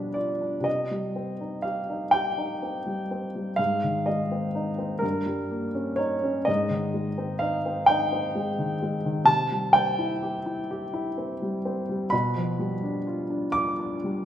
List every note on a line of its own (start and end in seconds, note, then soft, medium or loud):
0.00 0.62 B2 soft
0.00 0.68 F3 soft
0.00 0.68 G3 soft
0.00 0.31 D4 soft
0.00 0.15 B4 medium
0.14 0.56 F4 soft
0.14 0.65 D5 medium
0.41 0.66 D4 soft
0.60 3.52 C3 soft
0.60 1.64 D#5 medium
0.91 1.31 G3 soft
1.16 1.55 C4 soft
1.41 1.80 D#4 soft
1.62 2.04 G4 soft
1.62 2.13 F5 medium
1.90 2.28 D#4 soft
2.11 2.52 G4 soft
2.11 3.57 G5 medium
2.38 2.76 D#4 soft
2.62 3.01 C4 soft
2.86 3.25 G3 soft
3.11 3.49 C4 soft
3.36 3.59 G3 soft
3.56 4.99 G#2 medium
3.56 4.06 F5 medium
3.84 4.22 D#3 soft
4.06 4.46 G#3 soft
4.06 5.03 D#5 medium
4.32 4.70 C4 soft
4.55 4.93 D#4 soft
4.78 5.03 C4 soft
4.99 6.44 G2 medium
4.99 5.98 A#4 medium
5.26 5.66 G3 soft
5.51 5.90 A#3 soft
5.75 6.14 C#4 soft
5.96 6.38 D#4 soft
5.96 6.46 C#5 medium
6.24 6.48 C#4 soft
6.45 9.24 G#2 medium
6.45 7.41 D#5 medium
6.70 7.09 D#3 soft
6.94 7.32 G#3 soft
7.18 7.56 C4 soft
7.39 7.79 D#4 soft
7.39 7.87 F5 medium
7.66 8.03 C4 soft
7.86 8.26 D#4 medium
7.86 9.27 G5 medium
8.12 8.49 C4 soft
8.35 8.72 G#3 soft
8.59 8.96 D#3 soft
8.82 9.19 G#3 soft
9.05 9.29 D#3 soft
9.24 12.06 C3 medium
9.24 9.74 A5 medium
9.52 9.89 G3 soft
9.73 10.13 C4 soft
9.73 12.11 G5 medium
9.99 10.36 E4 soft
10.22 10.60 G4 soft
10.46 10.84 E4 soft
10.71 11.08 G4 medium
10.93 11.32 E4 soft
11.18 11.56 C4 soft
11.42 11.80 G3 soft
11.65 12.03 C4 soft
11.89 12.13 G3 soft
12.10 14.25 B2 medium
12.10 13.55 B5 medium
12.36 12.74 F3 soft
12.59 12.98 G3 soft
12.83 13.22 D4 soft
13.07 13.46 F4 soft
13.30 13.70 D4 soft
13.52 13.95 F4 soft
13.52 14.25 D6 loud
13.79 14.19 D4 soft
14.04 14.25 G3 soft